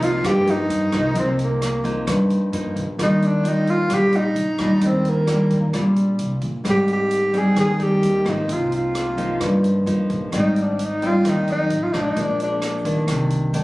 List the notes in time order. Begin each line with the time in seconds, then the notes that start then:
Already playing: C2 C3
0.00 F3 A#3 D#4 F4, closed hi-hat
0.23 G2 G4, kick, cross-stick, closed hi-hat
0.46 F3 A#3 D#4, closed hi-hat
0.70 G2, closed hi-hat
0.92 C2 F3 A#3 D#4, kick, cross-stick, closed hi-hat
1.15 C2 C3 F3 A#3 D#4, kick, closed hi-hat
1.19 C4
1.39 closed hi-hat
1.44 A#3
1.62 cross-stick, closed hi-hat
1.84 F3 A#3 D#4, closed hi-hat
2.07 G2, kick, cross-stick, closed hi-hat
2.30 closed hi-hat
2.53 G2 F3 A#3 D#4, closed hi-hat
2.76 A#1, kick, closed hi-hat
2.98 D#2 D#3 G3 D4 F4, kick, cross-stick, closed hi-hat
3.03 D#4
3.22 D4, closed hi-hat
3.43 G3 D4 F4, closed hi-hat
3.48 D#4
3.67 F4, closed hi-hat
3.89 A#1 A#2 G3 D4 F4, kick, cross-stick, closed hi-hat
3.94 G4
4.12 D#4, closed hi-hat
4.36 A#1, closed hi-hat
4.58 D#2 G3 D4 F4, kick, cross-stick, closed hi-hat
4.81 D#2 D#3, kick, closed hi-hat
4.86 C4
5.05 closed hi-hat
5.09 A#3
5.27 G3 D4 F4, cross-stick, closed hi-hat
5.50 kick, closed hi-hat
5.73 A#1 A#2 G3 D4 F4, kick, cross-stick, closed hi-hat
5.96 closed hi-hat
6.19 C2, closed hi-hat
6.41 A#1, kick, closed hi-hat
6.64 G#1 G#2 G3 C4 D#4, kick, cross-stick, closed hi-hat
6.70 G4
6.88 closed hi-hat
6.93 G4
7.11 closed hi-hat
7.33 G3 C4 D#4, closed hi-hat
7.37 G#4
7.56 D#2 D#3, kick, cross-stick, closed hi-hat
7.60 G#4
7.79 G3 C4 D#4 G4, closed hi-hat
8.03 D#2, closed hi-hat
8.25 G#1 F3 A#3 D#4, kick, cross-stick, closed hi-hat
8.29 D#4
8.48 C2 C3, kick, closed hi-hat
8.53 F4
8.72 F4, closed hi-hat
8.95 cross-stick, closed hi-hat
9.17 F3 A#3 D#4, closed hi-hat
9.41 G2, kick, cross-stick, closed hi-hat
9.64 closed hi-hat
9.86 G2 F3 A#3 D#4, closed hi-hat
10.10 A#1, kick, closed hi-hat
10.32 G#1 G#2 G3 C4 D#4, kick, cross-stick, closed hi-hat
10.38 D#4
10.56 closed hi-hat
10.62 D4
10.79 closed hi-hat
10.85 D#4
11.02 G3 C4 D#4, closed hi-hat
11.06 F4
11.25 D#2 D#3, kick, cross-stick, closed hi-hat
11.29 D#4
11.48 F#3 C4 D#4, closed hi-hat
11.70 A1, closed hi-hat
11.83 F4
11.92 A1 F3 G#3 D4 D#4, kick, cross-stick, closed hi-hat
12.02 D4
12.10 D#4
12.16 A#1 A#2 D4, kick, closed hi-hat
12.40 D4, closed hi-hat
12.62 cross-stick, closed hi-hat
12.85 D#3 A#3 D4, kick, closed hi-hat
13.08 C2 C3, kick, cross-stick, closed hi-hat
13.30 closed hi-hat
13.53 G2 D#3 A#3 D4, closed hi-hat